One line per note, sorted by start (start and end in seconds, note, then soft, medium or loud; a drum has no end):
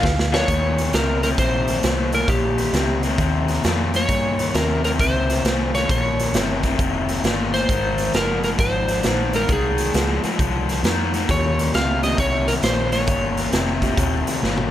0.00 0.47 D2 loud
0.00 0.48 F5 loud
0.00 muted overdriven electric guitar stroke soft
0.00 kick medium
0.05 snare medium
0.19 snare medium
0.33 0.49 F3 medium
0.33 0.49 A#3 medium
0.33 0.48 D4 medium
0.33 0.48 F4 loud
0.33 0.96 C#5 loud
0.33 snare loud
0.48 0.92 D#2 medium
0.48 0.90 D#2 medium
0.48 0.91 A#2 medium
0.48 kick loud
0.48 closed hi-hat medium
0.78 snare soft
0.78 closed hi-hat medium
0.93 1.37 C#2 medium
0.93 1.20 D#2 medium
0.93 1.20 C3 medium
0.93 1.22 A#4 medium
0.93 snare loud
0.93 closed hi-hat medium
1.23 1.37 D#2 medium
1.23 1.37 C3 medium
1.23 1.29 A#4 medium
1.23 snare soft
1.23 closed hi-hat medium
1.38 1.82 A#1 medium
1.38 1.80 D#2 medium
1.38 1.81 C3 medium
1.38 2.14 C5 medium
1.38 kick loud
1.38 snare soft
1.38 closed hi-hat medium
1.68 snare soft
1.68 closed hi-hat medium
1.83 2.27 C2 medium
1.83 2.10 D#2 medium
1.83 2.10 A#2 medium
1.83 snare loud
1.83 closed hi-hat medium
2.12 2.27 D#2 medium
2.12 2.27 A#2 medium
2.12 2.30 A#4 medium
2.12 snare soft
2.12 closed hi-hat medium
2.28 2.72 A#1 medium
2.28 2.70 D#2 medium
2.28 2.71 A#2 medium
2.28 2.99 G4 medium
2.28 kick loud
2.28 snare soft
2.28 closed hi-hat medium
2.58 snare soft
2.58 closed hi-hat medium
2.73 3.17 C#2 medium
2.73 3.00 D#2 medium
2.73 3.00 C3 medium
2.73 snare loud
2.73 closed hi-hat medium
3.03 3.17 D#2 medium
3.03 3.18 C3 medium
3.03 snare soft
3.03 closed hi-hat medium
3.18 3.62 D#2 medium
3.18 3.61 D#2 medium
3.18 3.61 C3 medium
3.18 kick loud
3.18 snare soft
3.18 closed hi-hat medium
3.48 snare soft
3.48 closed hi-hat medium
3.64 3.90 D#2 medium
3.64 4.08 F2 medium
3.64 3.91 A#2 medium
3.64 snare loud
3.64 closed hi-hat medium
3.94 4.07 D#2 medium
3.94 4.08 A#2 medium
3.94 4.57 C#5 loud
3.94 snare soft
3.94 closed hi-hat medium
4.09 4.51 D#2 medium
4.09 4.53 G2 medium
4.09 4.51 A#2 medium
4.09 kick loud
4.09 closed hi-hat medium
4.39 snare soft
4.39 closed hi-hat medium
4.54 4.80 D#2 medium
4.54 4.98 D#2 medium
4.54 4.81 C3 medium
4.54 4.84 A#4 medium
4.54 snare loud
4.54 closed hi-hat medium
4.84 4.97 D#2 medium
4.84 4.98 C3 medium
4.84 4.90 A#4 medium
4.84 snare soft
4.84 closed hi-hat medium
4.99 5.43 C#2 medium
4.99 5.41 D#2 medium
4.99 5.42 C3 medium
4.99 5.74 C5 loud
4.99 kick loud
4.99 snare soft
4.99 closed hi-hat medium
5.30 snare soft
5.30 closed hi-hat medium
5.44 5.88 C2 medium
5.44 5.71 D#2 medium
5.44 5.71 A#2 medium
5.44 snare loud
5.44 closed hi-hat medium
5.74 5.88 D#2 medium
5.74 5.88 A#2 medium
5.74 5.90 C#5 medium
5.74 snare soft
5.74 closed hi-hat medium
5.89 6.33 A#1 medium
5.89 6.31 D#2 medium
5.89 6.32 A#2 medium
5.89 6.60 C#5 medium
5.89 kick loud
5.89 closed hi-hat medium
6.19 snare soft
6.19 closed hi-hat medium
6.34 6.78 G1 medium
6.34 6.61 D#2 medium
6.34 6.61 C3 medium
6.34 snare loud
6.34 closed hi-hat medium
6.63 6.78 D#2 medium
6.63 6.78 C3 medium
6.63 kick medium
6.63 snare soft
6.63 closed hi-hat medium
6.79 7.23 F1 medium
6.79 7.21 D#2 medium
6.79 7.22 C3 medium
6.79 kick loud
6.79 closed hi-hat medium
7.09 snare soft
7.09 closed hi-hat medium
7.24 7.68 G1 medium
7.24 7.51 D#2 medium
7.24 7.51 A#2 medium
7.24 snare loud
7.24 closed hi-hat medium
7.54 7.68 D#2 medium
7.54 7.68 A#2 medium
7.54 8.16 C5 loud
7.54 snare soft
7.54 closed hi-hat medium
7.69 8.13 G#1 medium
7.69 8.12 G#2 medium
7.69 8.12 D#3 medium
7.69 kick loud
7.69 closed hi-hat medium
7.98 snare soft
7.98 closed hi-hat medium
8.14 8.58 F#1 medium
8.14 8.41 G#2 medium
8.14 8.41 F3 medium
8.14 8.43 A#4 medium
8.14 snare loud
8.14 closed hi-hat medium
8.43 8.58 G#2 medium
8.43 8.58 F3 medium
8.43 8.49 A#4 medium
8.43 snare soft
8.43 closed hi-hat medium
8.58 9.03 G#1 medium
8.58 9.01 G#2 medium
8.58 9.02 F3 medium
8.58 9.36 C5 medium
8.58 kick loud
8.58 snare soft
8.58 closed hi-hat medium
8.88 snare soft
8.88 closed hi-hat medium
9.03 9.48 A#1 medium
9.03 9.31 G#2 medium
9.03 9.31 D#3 medium
9.03 snare loud
9.03 closed hi-hat medium
9.33 9.48 G#2 medium
9.33 9.48 D#3 medium
9.33 9.51 A#4 medium
9.33 snare soft
9.33 closed hi-hat medium
9.48 9.93 C2 medium
9.48 9.91 G#2 medium
9.48 9.92 D#3 medium
9.48 10.21 G#4 medium
9.48 kick loud
9.48 closed hi-hat medium
9.78 snare soft
9.78 closed hi-hat medium
9.94 10.22 C#2 medium
9.94 10.21 G#2 medium
9.94 10.21 F3 medium
9.94 snare loud
9.94 closed hi-hat medium
10.24 10.38 G#2 medium
10.24 10.38 F3 medium
10.24 snare soft
10.24 closed hi-hat medium
10.39 10.82 C2 medium
10.39 10.81 G#2 medium
10.39 10.81 F3 medium
10.39 kick loud
10.39 closed hi-hat medium
10.69 snare soft
10.69 closed hi-hat medium
10.83 11.27 F2 medium
10.83 11.11 G#2 medium
10.83 11.11 D#3 medium
10.83 snare loud
10.83 closed hi-hat medium
11.14 11.28 G#2 medium
11.14 11.28 D#3 medium
11.14 snare soft
11.14 closed hi-hat medium
11.28 11.71 D#2 medium
11.28 11.73 D#2 medium
11.28 11.71 A#2 medium
11.28 11.97 A#3 medium
11.28 11.97 C#4 medium
11.28 11.97 F4 medium
11.28 11.98 G4 medium
11.28 11.72 C#5 medium
11.28 kick loud
11.28 snare soft
11.28 closed hi-hat medium
11.59 snare soft
11.59 closed hi-hat medium
11.74 12.17 C#2 medium
11.74 12.00 D#2 medium
11.74 12.01 C3 medium
11.74 12.03 F5 loud
11.74 snare loud
11.74 closed hi-hat medium
12.02 12.17 D#2 medium
12.02 12.17 C3 medium
12.02 12.17 A#3 medium
12.02 12.17 C#4 medium
12.02 12.17 F4 medium
12.02 12.17 G4 medium
12.02 12.19 D#5 medium
12.02 snare soft
12.02 closed hi-hat medium
12.18 12.62 C2 medium
12.18 12.60 D#2 medium
12.18 12.61 C3 medium
12.18 12.50 C#5 medium
12.18 kick loud
12.18 closed hi-hat medium
12.48 12.53 A#4 medium
12.48 snare soft
12.48 closed hi-hat medium
12.63 13.07 A#1 medium
12.63 12.90 D#2 medium
12.63 12.90 A#2 medium
12.63 12.91 C5 medium
12.63 snare loud
12.63 closed hi-hat medium
12.92 13.06 D#2 medium
12.92 13.07 A#2 medium
12.92 13.49 C#5 medium
12.92 snare soft
12.92 closed hi-hat medium
13.07 13.52 G1 medium
13.07 13.50 D#2 medium
13.07 13.50 A#2 medium
13.07 kick loud
13.07 closed hi-hat medium
13.37 snare soft
13.37 closed hi-hat medium
13.52 13.97 F1 medium
13.52 13.79 D#2 medium
13.52 13.80 C3 medium
13.52 snare loud
13.52 closed hi-hat medium
13.81 13.96 D#2 medium
13.81 13.97 C3 medium
13.81 14.39 A#3 medium
13.81 14.40 F4 medium
13.81 14.40 G4 medium
13.81 14.40 C#5 medium
13.81 kick medium
13.81 snare soft
13.81 closed hi-hat medium
13.97 14.25 D#1 medium
13.97 14.40 D#2 medium
13.97 14.40 C3 medium
13.97 kick loud
13.97 closed hi-hat medium
14.27 snare soft
14.27 closed hi-hat medium
14.43 14.71 G1 medium
14.43 14.69 D#2 medium
14.43 14.70 A#2 medium
14.43 snare medium
14.58 mid tom medium